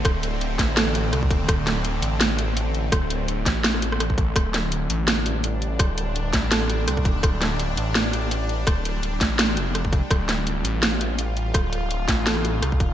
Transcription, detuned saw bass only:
X:1
M:4/4
L:1/8
Q:"Swing 16ths" 1/4=167
K:Dm
V:1 name="Detuned saw bass" clef=bass
D,,,3 A,,,3 C,, _E,,, | D,,,3 A,,,4- A,,, | D,,,3 A,,,4 A,,, | D,,,3 A,,,4- A,,, |
D,,,3 A,,,3 C,, _E,,, | D,,,3 A,,,4- A,,, | D,,,3 A,,,2 F,,,2 z | D,,,3 A,,,4- A,,, |
D,,,3 A,,,3 C,, _E,,, |]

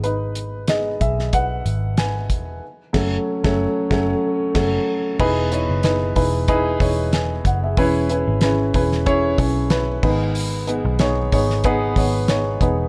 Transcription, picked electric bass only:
X:1
M:4/4
L:1/16
Q:"Swing 16ths" 1/4=93
K:E
V:1 name="Picked electric bass" clef=bass
G,,,6 B,,,4 G,,,4 E,,,2 | z2 F,,,2 z F,,,2 z F,,,2 z2 F,,,2 z2 | E,,,3 F,,,3 E,,,4 E,,,4 F,,,2 | E,,,3 G,,,3 E,,,4 B,,,4 G,,,2- |
G,,,3 B,,,3 G,,,4 G,,,4 E,,,2 |]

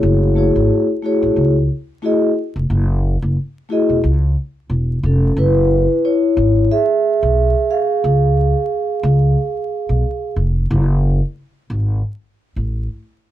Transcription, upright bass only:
X:1
M:4/4
L:1/16
Q:"Swing 16ths" 1/4=90
K:F#dor
V:1 name="Upright bass" clef=bass
F,,,3 G,,, z3 A,,, C,,2 z4 z ^E,,, | F,,,3 F,,, z3 E,,, C,,2 z2 E,,,2 ^E,,,2 | F,,,3 z3 G,,,2 z3 B,,,2 z3 | C,,3 z3 C,,2 z3 B,,, z2 ^E,,,2 |
F,,,3 z3 G,,,2 z3 A,,,2 z3 |]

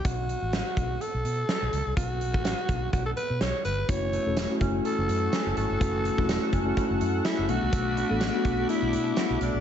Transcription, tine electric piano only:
X:1
M:4/4
L:1/16
Q:"Swing 16ths" 1/4=125
K:Bm
V:1 name="Tine electric piano"
z16 | z16 | [A,CEF]2 z [A,CEA]2 [A,CEF]6- [A,CEF] z4 | [A,CEF]2 z [A,CEF]3 z [A,CEF]6- [A,CEF] [A,B,DF]2- |
[A,B,DF]2 z [A,B,DA]2 [A,B,DF]6- [A,B,DF] z4 |]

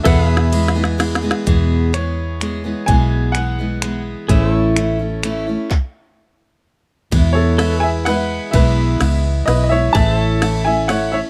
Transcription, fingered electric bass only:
X:1
M:3/4
L:1/8
Q:1/4=127
K:E
V:1 name="Fingered electric bass" clef=bass
E,,6 | E,,6 | B,,,6 | A,,,6 |
z6 | E,,6 | B,,,2 C,,2 B,,,2 | A,,,6 |]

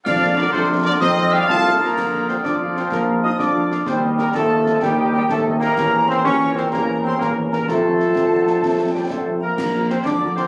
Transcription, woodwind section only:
X:1
M:6/8
L:1/8
Q:3/8=126
K:Bb
V:1 name="Woodwind section"
d2 B A2 B | c2 [Gd] [Af]2 B- | B2 c d2 c | B2 e d3 |
c2 B A3 | G2 G A2 B- | B2 c ^c2 =c | B2 c B2 B |
A6- | A2 G A2 B- | B2 c d2 c |]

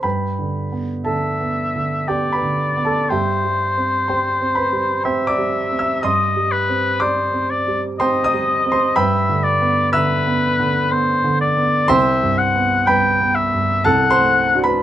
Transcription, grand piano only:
X:1
M:3/4
L:1/16
Q:1/4=61
K:G
V:1 name="Grand piano"
[Bgb]4 [Aa]4 [Gdg] [Bb]2 [Aa] | [Geg]4 [cgc']2 [Bb]2 [cgc'] [dd']2 [ee'] | [_ec'_e']4 [dd']4 [cgc'] [ee']2 [cc'] | [Bgb]4 [ee']2 z6 |
[cgc']4 [Bgb]4 [Afa] [cc']2 [Bb] |]
V:2 name="Grand piano" clef=bass
(3G,,2 D,2 B,2 (3D,2 B,2 D,2 (3B,2 D,2 B,2 | (3G,,2 G,2 C2 (3G,2 C2 G,2 (3C2 G,2 C2 | (3G,,2 G,2 C2 (3G,2 C2 G,2 (3C2 G,2 C2 | (3G,,2 D,2 B,2 (3D,2 B,2 D,2 (3B,2 D,2 B,2 |
(3C,,2 G,,2 B,2 (3G,,2 B,2 G,,2 (3C,,2 A,2 [DF]2 |]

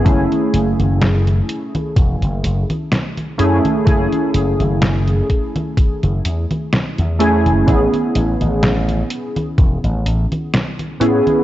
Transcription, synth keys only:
X:1
M:4/4
L:1/8
Q:"Swing 16ths" 1/4=63
K:F#m
V:1 name="Synth keys"
[A,CEG]6- [A,CEG] [A,CEG] | [A,CEG]6- [A,CEG] [A,CEG] | [B,CEG]6- [B,CEG] [B,CEG] |]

